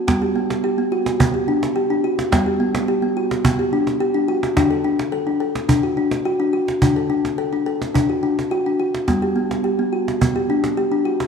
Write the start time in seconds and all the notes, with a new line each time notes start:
0.08 G3 B3, cajon bass, cajon slap
0.22 G4
0.36 B3
0.50 cajon slap
0.64 G4, cajon slap
0.78 B3
0.92 F#4
1.06 cajon slap
1.20 B3, cajon bass
1.34 G4, cajon slap
1.48 D4
1.63 cajon slap
1.76 G4
1.90 D4
2.04 F#4
2.19 cajon slap
2.32 G3 B3, cajon bass, cajon slap
2.46 G4
2.60 B3
2.75 cajon slap
2.88 G4, cajon slap
3.02 B3
3.17 F#4
3.31 cajon slap
3.45 B3, cajon bass
3.59 G4, cajon slap
3.73 D4
3.87 cajon slap
4.00 G4
4.14 D4
4.28 F#4
4.43 cajon slap
4.57 D3 D4, cajon bass, cajon slap
4.71 A4
4.84 D4
4.99 cajon slap
5.12 A4, cajon slap
5.27 D4
5.40 A4
5.55 cajon slap
5.69 D4, cajon bass
5.83 F#4, cajon slap
5.97 D4
6.11 cajon slap
6.25 F#4
6.40 D4
6.53 F#4
6.68 cajon slap
6.82 D3 D4, cajon bass
6.96 A4
7.10 D4
7.25 cajon slap
7.38 A4, cajon slap
7.53 D4, cajon slap
7.66 A4, cajon slap
7.82 cajon slap
7.95 D4, cajon bass
8.10 F#4
8.23 D4
8.39 cajon slap
8.51 F#4
8.66 D4
8.80 F#4
8.95 cajon slap
9.08 G3 B3, cajon bass, cajon slap
9.22 G4
9.36 B3
9.51 cajon slap
9.64 G4, cajon slap
9.79 B3
9.93 F#4
10.08 cajon slap
10.21 B3, cajon bass
10.36 G4, cajon slap
10.50 D4
10.64 cajon slap
10.77 G4
10.92 D4
11.05 F#4
11.20 cajon slap